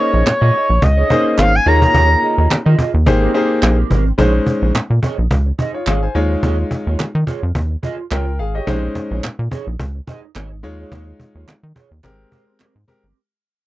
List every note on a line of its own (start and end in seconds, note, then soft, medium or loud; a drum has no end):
0.00 0.22 A#3 medium
0.00 0.22 C#4 medium
0.00 0.13 D#4 medium
0.00 0.22 D#4 medium
0.00 0.13 G#4 medium
0.00 0.22 G#4 medium
0.00 0.22 C5 medium
0.00 0.84 C#5 loud
0.00 0.12 D#5 medium
0.13 0.23 A#1 loud
0.13 0.24 D#4 medium
0.13 0.25 G#4 medium
0.13 0.25 D#5 medium
0.25 0.32 A#2 soft
0.25 muted clean electric guitar stroke medium
0.25 cajon slap loud
0.25 clap medium
0.41 0.51 A#2 loud
0.41 0.52 D#4 medium
0.41 0.53 G#4 loud
0.41 0.54 D#5 loud
0.53 0.69 D#4 medium
0.53 0.69 G#4 medium
0.53 0.69 D#5 medium
0.53 cajon slap soft
0.69 0.79 A#1 medium
0.69 muted clean electric guitar stroke soft
0.82 1.03 C#2 loud
0.82 1.38 D#5 loud
0.82 muted clean electric guitar stroke soft
0.82 cajon bass loud
0.97 1.08 D#4 medium
0.97 1.09 G#4 medium
0.97 1.10 C#5 medium
1.10 1.50 A#3 medium
1.10 1.50 C#4 medium
1.10 1.25 D#4 medium
1.10 1.50 D#4 medium
1.10 1.25 G#4 medium
1.10 1.50 G#4 medium
1.10 1.51 C5 medium
1.10 1.24 C#5 medium
1.10 cajon bass loud
1.25 muted clean electric guitar stroke medium
1.38 1.59 G#1 loud
1.38 1.57 F5 loud
1.38 cajon slap loud
1.38 clap medium
1.54 1.69 G#5 loud
1.54 muted clean electric guitar stroke soft
1.66 1.87 D#2 loud
1.66 2.57 A#3 medium
1.66 2.57 D#4 medium
1.66 1.82 F4 medium
1.66 2.57 F4 medium
1.66 2.57 G#4 medium
1.66 1.82 G#4 medium
1.66 2.57 C#5 medium
1.66 1.80 C#5 medium
1.66 2.51 A#5 loud
1.66 cajon slap soft
1.82 1.93 F4 medium
1.82 1.94 G#4 medium
1.82 1.93 C#5 medium
1.82 cajon bass medium
1.94 2.16 D#2 loud
1.94 2.12 F4 medium
1.94 2.10 G#4 loud
1.94 2.09 C#5 medium
1.94 cajon bass loud
2.10 muted clean electric guitar stroke medium
2.22 2.37 F4 medium
2.22 2.37 G#4 medium
2.22 2.37 D#5 medium
2.22 cajon slap soft
2.38 2.47 D#2 loud
2.38 2.49 F4 medium
2.38 2.50 G#4 medium
2.38 2.50 D#5 medium
2.38 cajon slap soft
2.50 2.57 D#3 soft
2.50 cajon slap loud
2.50 clap loud
2.65 2.75 D#3 loud
2.65 2.77 F4 medium
2.65 2.78 G#4 medium
2.65 2.79 D#5 medium
2.78 2.93 F4 medium
2.78 2.94 G#4 medium
2.78 2.93 D#5 medium
2.78 cajon bass loud
2.94 3.08 D#2 loud
2.94 muted clean electric guitar stroke medium
3.06 3.28 G#1 loud
3.06 3.29 A#3 medium
3.06 3.30 D#4 medium
3.06 3.30 G4 medium
3.06 3.30 G#4 medium
3.06 3.30 C5 loud
3.06 muted clean electric guitar stroke soft
3.06 cajon bass loud
3.22 3.33 C4 medium
3.22 3.34 G4 medium
3.22 3.35 A#4 medium
3.34 3.74 A#3 medium
3.34 3.49 C4 medium
3.34 3.74 D#4 medium
3.34 3.75 G4 medium
3.34 3.50 G4 medium
3.34 3.75 G#4 medium
3.34 3.49 A#4 medium
3.34 3.75 C5 loud
3.34 cajon slap soft
3.50 muted clean electric guitar stroke medium
3.63 3.84 A#1 loud
3.63 cajon slap loud
3.63 clap medium
3.78 3.89 C4 medium
3.78 3.90 G4 medium
3.78 3.90 A#4 medium
3.90 4.12 G#1 medium
3.90 4.08 C4 medium
3.90 4.06 G4 medium
3.90 4.05 A#4 medium
3.90 cajon bass loud
4.06 muted clean electric guitar stroke soft
4.06 cajon slap soft
4.18 4.40 A#1 loud
4.18 4.70 G#3 medium
4.18 4.71 C#4 medium
4.18 4.37 D#4 medium
4.18 4.71 D#4 medium
4.18 4.34 G#4 medium
4.18 4.71 C5 loud
4.18 4.33 C#5 medium
4.18 cajon bass loud
4.34 muted clean electric guitar stroke medium
4.46 muted clean electric guitar stroke soft
4.46 cajon bass medium
4.46 cajon slap medium
4.62 4.72 A#1 loud
4.62 4.73 D#4 medium
4.62 4.74 G#4 medium
4.62 4.74 C#5 medium
4.74 4.81 A#2 medium
4.74 muted clean electric guitar stroke soft
4.74 cajon slap loud
4.74 clap medium
4.90 5.00 A#2 medium
4.90 muted clean electric guitar stroke soft
5.02 5.21 D#4 medium
5.02 5.18 G#4 medium
5.02 5.17 C#5 medium
5.02 cajon bass loud
5.18 5.28 A#1 medium
5.18 muted clean electric guitar stroke soft
5.31 5.52 C#2 loud
5.31 cajon bass loud
5.46 muted clean electric guitar stroke medium
5.58 5.77 D#4 medium
5.58 5.74 G#4 medium
5.58 5.74 D#5 medium
5.58 cajon bass loud
5.74 5.87 F4 medium
5.74 5.86 C#5 medium
5.74 muted clean electric guitar stroke soft
5.86 6.08 G#1 medium
5.86 6.05 D#4 medium
5.86 6.03 G#4 loud
5.86 6.02 G#4 medium
5.86 6.01 C#5 medium
5.86 6.02 F5 medium
5.86 cajon slap loud
5.86 clap medium
6.02 6.30 C5 medium
6.02 6.29 G#5 medium
6.02 muted clean electric guitar stroke medium
6.15 6.36 D#2 loud
6.15 7.05 G#3 medium
6.15 7.05 D#4 medium
6.15 7.05 F4 medium
6.15 7.06 C#5 loud
6.15 muted clean electric guitar stroke soft
6.30 6.41 F4 soft
6.30 6.43 G#4 medium
6.30 6.42 C#5 medium
6.43 6.64 D#2 loud
6.43 6.61 F4 medium
6.43 6.59 G#4 medium
6.43 6.58 C#5 loud
6.43 cajon bass loud
6.59 muted clean electric guitar stroke soft
6.71 muted clean electric guitar stroke soft
6.71 cajon bass medium
6.71 cajon slap soft
6.87 6.96 D#2 loud
6.87 6.98 F4 soft
6.87 6.98 G#4 medium
6.87 6.98 C#5 medium
6.99 7.05 D#3 medium
6.99 muted clean electric guitar stroke soft
6.99 cajon slap loud
6.99 clap medium
7.15 7.24 D#3 loud
7.15 muted clean electric guitar stroke medium
7.27 7.45 F4 medium
7.27 7.43 G#4 medium
7.27 7.41 C#5 medium
7.27 cajon bass loud
7.43 7.52 F2 loud
7.43 muted clean electric guitar stroke medium
7.55 7.76 D#2 medium
7.55 cajon bass loud
7.71 muted clean electric guitar stroke soft
7.83 8.01 F4 medium
7.83 7.99 G#4 loud
7.83 7.98 D#5 loud
7.83 cajon bass medium
7.98 muted clean electric guitar stroke soft
8.11 8.41 C#2 medium
8.11 8.29 F4 medium
8.11 8.27 G#4 medium
8.11 8.38 A#4 medium
8.11 8.25 C#5 medium
8.11 8.38 G5 medium
8.11 cajon slap loud
8.11 clap medium
8.27 muted clean electric guitar stroke soft
8.39 8.60 G#1 loud
8.39 8.54 G#4 medium
8.39 8.54 F5 medium
8.39 muted clean electric guitar stroke soft
8.54 8.66 F4 medium
8.54 8.82 G4 medium
8.54 8.67 G#4 medium
8.54 8.66 C#5 medium
8.54 8.82 D#5 medium
8.67 8.88 A#1 loud
8.67 9.19 G#3 medium
8.67 9.19 C#4 medium
8.67 8.85 D#4 medium
8.67 9.19 D#4 medium
8.67 8.83 G#4 medium
8.67 9.20 C5 loud
8.67 8.82 C#5 medium
8.67 cajon bass loud
8.83 muted clean electric guitar stroke soft
8.95 cajon bass loud
8.95 cajon slap medium
9.11 9.20 A#1 loud
9.11 9.22 D#4 soft
9.11 9.22 G#4 medium
9.11 9.22 C#5 medium
9.23 9.30 A#2 medium
9.23 muted clean electric guitar stroke medium
9.23 cajon slap medium
9.23 clap medium
9.39 9.48 A#2 loud
9.39 muted clean electric guitar stroke soft
9.51 9.69 D#4 medium
9.51 9.67 G#4 medium
9.51 9.66 C#5 medium
9.51 cajon bass loud
9.67 9.76 A#1 medium
9.67 muted clean electric guitar stroke soft
9.79 10.01 C#2 medium
9.79 cajon bass loud
9.95 muted clean electric guitar stroke medium
10.07 10.25 D#4 medium
10.07 10.23 G#4 medium
10.07 10.23 D#5 loud
10.07 cajon bass loud
10.23 muted clean electric guitar stroke soft
10.35 10.65 G#1 loud
10.35 10.53 D#4 medium
10.35 10.51 G#4 medium
10.35 10.50 C#5 medium
10.35 cajon slap loud
10.35 clap medium
10.51 muted clean electric guitar stroke soft
10.63 10.85 D#2 medium
10.63 11.54 G#3 medium
10.63 11.54 D#4 medium
10.63 11.54 F4 medium
10.63 11.54 C#5 loud
10.63 muted clean electric guitar stroke soft
10.79 10.90 F4 medium
10.79 10.91 G#4 medium
10.79 10.91 C#5 medium
10.91 11.13 D#2 loud
10.91 11.09 F4 medium
10.91 11.07 G#4 medium
10.91 11.06 C#5 medium
10.91 cajon bass loud
11.07 muted clean electric guitar stroke soft
11.19 muted clean electric guitar stroke soft
11.19 cajon bass medium
11.19 cajon slap soft
11.35 11.45 D#2 medium
11.35 11.46 F4 soft
11.35 11.47 G#4 medium
11.35 11.47 C#5 medium
11.47 11.54 D#3 soft
11.47 muted clean electric guitar stroke medium
11.47 cajon slap loud
11.47 clap medium
11.63 11.73 D#3 medium
11.63 muted clean electric guitar stroke soft
11.75 11.94 F4 medium
11.75 11.91 G#4 medium
11.75 11.90 C#5 medium
11.75 cajon bass loud
11.91 12.01 D#2 medium
11.91 muted clean electric guitar stroke soft
12.03 12.25 G#1 loud
12.03 12.72 G#3 medium
12.03 12.72 C4 medium
12.03 12.72 G4 medium
12.03 12.73 A#4 medium
12.03 cajon bass loud
12.03 clap medium
12.19 muted clean electric guitar stroke soft
12.31 12.50 C4 medium
12.31 12.47 G4 medium
12.31 12.47 C5 loud
12.31 cajon bass medium
12.47 muted clean electric guitar stroke medium
12.59 12.78 C4 medium
12.59 12.75 G4 medium
12.59 12.74 A#4 medium
12.59 cajon slap loud
12.59 clap medium
12.75 12.85 G#2 medium
12.75 muted clean electric guitar stroke medium
12.87 13.02 G#3 medium
12.87 13.02 C4 medium
12.87 13.02 G4 medium
12.87 13.02 A#4 loud
12.87 muted clean electric guitar stroke soft
12.87 cajon bass medium
13.03 13.13 G1 loud
13.03 13.16 C4 soft
13.03 13.15 G4 medium
13.03 13.15 A#4 medium